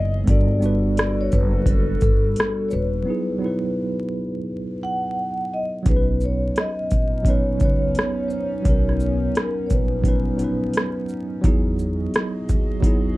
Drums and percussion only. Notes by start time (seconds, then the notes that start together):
0.27 kick, closed hi-hat
0.62 shaker
0.97 cross-stick, closed hi-hat
1.32 kick, closed hi-hat, shaker
1.66 kick, closed hi-hat
2.01 kick, closed hi-hat, shaker
2.36 cross-stick, closed hi-hat
2.71 shaker
5.86 kick, closed hi-hat
6.21 shaker
6.56 cross-stick, closed hi-hat
6.91 kick, closed hi-hat, shaker
7.25 kick, closed hi-hat
7.60 kick, closed hi-hat, shaker
7.95 cross-stick, closed hi-hat
8.30 shaker
8.65 kick, closed hi-hat
8.89 cross-stick
9.00 shaker
9.35 cross-stick, closed hi-hat
9.70 kick, closed hi-hat, shaker
10.04 kick, closed hi-hat
10.39 closed hi-hat, shaker
10.74 cross-stick, closed hi-hat
11.09 shaker
11.44 kick, closed hi-hat
11.79 shaker
12.14 cross-stick, closed hi-hat
12.49 kick, closed hi-hat, shaker
12.83 kick, closed hi-hat